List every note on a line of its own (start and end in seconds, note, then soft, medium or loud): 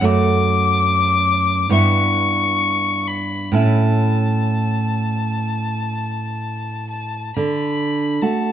0.01 1.67 F#2 medium
0.01 1.68 A3 medium
0.01 1.68 F#4 medium
0.01 1.72 D6 loud
1.69 3.50 G2 medium
1.69 3.50 B3 medium
1.69 3.51 E4 medium
1.69 3.09 C#6 loud
3.07 3.55 B5 loud
3.52 7.30 A2 medium
3.52 7.31 C#4 medium
3.52 7.31 E4 medium
3.56 6.86 A5 medium
6.90 7.33 A5 medium
7.36 8.19 D3 medium
7.36 8.23 B5 medium
8.22 8.52 A3 soft
8.22 8.52 F#4 medium
8.22 8.52 A5 medium